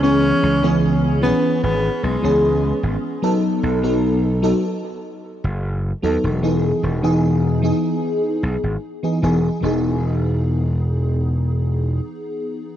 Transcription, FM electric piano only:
X:1
M:4/4
L:1/16
Q:1/4=75
K:E
V:1 name="FM electric piano"
[E,B,CG]3 [E,B,CG]3 [E,B,CG]4- [E,B,CG] [E,B,CG]4- [E,B,CG] | [F,B,DA]3 [F,B,DA]3 [F,B,DA] z6 z [F,B,DA]2 | [E,B,DG]3 [E,B,DG]3 [E,B,DG]4- [E,B,DG] z2 [E,B,DG] [E,B,DG] z | [E,B,DG]16 |]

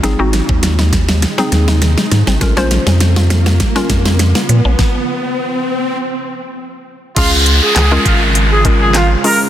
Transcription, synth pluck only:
X:1
M:4/4
L:1/16
Q:1/4=101
K:Db
V:1 name="Synth pluck"
[CEA] [CEG]6- [CEG] z [CEA]6 z | [DFB] [DFc]6- [DFc] z [DFB]6 z | z16 | [A,DFA]4 z [A,DFB]4 z [A,DFB]3 z [A,DFA]2 |]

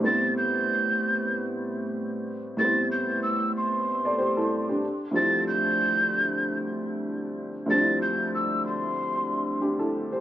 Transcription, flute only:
X:1
M:4/4
L:1/16
Q:"Swing 16ths" 1/4=94
K:Am
V:1 name="Flute"
a'2 g'6- g' z6 z | a'2 g'2 e'2 c'6- c' z3 | a'2 g'6- g' z6 z | a'2 g'2 e'2 c'6- c' z3 |]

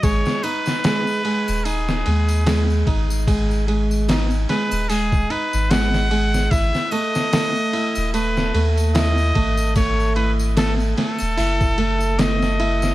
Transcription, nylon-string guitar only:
X:1
M:4/4
L:1/8
Q:"Swing 16ths" 1/4=74
K:G#phr
V:1 name="Nylon-string guitar"
G, D G, G, D G, G, D | G, G, D G, G, D G, G, | E A, A, E A, A, E A, | A, E A, A, E A, A, E |]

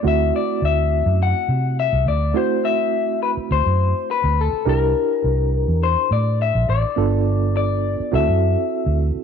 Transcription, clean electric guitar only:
X:1
M:4/4
L:1/8
Q:"Swing 16ths" 1/4=104
K:Ddor
V:1 name="Clean electric guitar"
e d e2 ^f2 e d | c e2 B c2 B A | _B4 c d e d- | d2 d2 e3 z |]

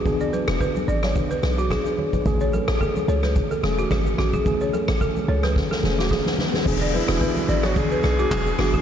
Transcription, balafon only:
X:1
M:4/4
L:1/16
Q:"Swing 16ths" 1/4=109
K:Emix
V:1 name="Balafon"
z d B z B z d c z B z F G2 z2 | z c A z A z c B z A z F G z F G | z c A z A z c B z A z F G2 z2 | z d B z B z d c z B z F G z F G |]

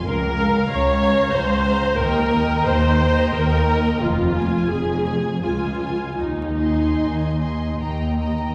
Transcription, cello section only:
X:1
M:3/4
L:1/8
Q:1/4=88
K:Ebmix
V:1 name="Cello section" clef=bass
D,,2 D,,2 D,,2 | E,,2 E,,2 E,,2 | F,,2 F,,2 D,,2 | E,,2 E,,2 E,,2 |]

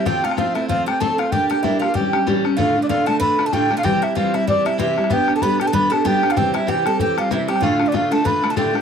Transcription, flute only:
X:1
M:4/4
L:1/16
Q:"Swing" 1/4=190
K:F
V:1 name="Flute"
g2 f2 f2 e2 f2 g2 a2 f2 | g2 g2 e2 f2 g4 z4 | [K:Ddor] f3 d f2 a2 b3 a g3 f | g2 e2 f2 e2 d2 e2 e4 |
g3 a b2 g a b2 a2 g3 f | g2 e2 g2 a2 g2 f2 e2 g2 | f3 d f2 a2 b3 a g3 z |]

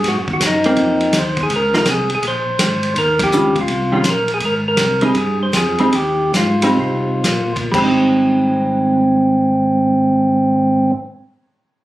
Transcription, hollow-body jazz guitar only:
X:1
M:4/4
L:1/8
Q:"Swing" 1/4=160
K:Ab
V:1 name="Hollow-body jazz guitar"
z3 [B,C]3 z2 | z [F,B,E] z6 | z2 [E,G,DF] z2 [E,G,DF] z2 | z3 [G,CE] z3 [G,CE] |
z3 [G,CE]3 z2 | [G,CE]8- | [G,CE]8 |]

